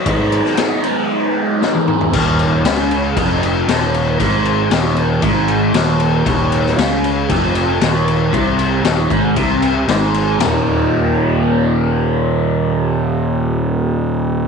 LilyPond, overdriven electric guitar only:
\new Staff \with { instrumentName = "Overdriven electric guitar" } { \clef bass \time 4/4 \key ees \mixolydian \tempo 4 = 116 <aes, ees aes ces' ees'>4 <ees aes ces' ees'>8 <aes ces' ees'>4. <aes, ees aes ces' ees'>8 <aes ces' ees'>8 | ees,4 des4 f,4 ees,4 | aes,4 ees,4 aes,4 ees,4 | ees,4 des4 f,4 ees,4 |
c4 ees,8 aes,8 c4 aes,4 | <ees, bes, ees g bes ees'>1~ | <ees, bes, ees g bes ees'>1 | }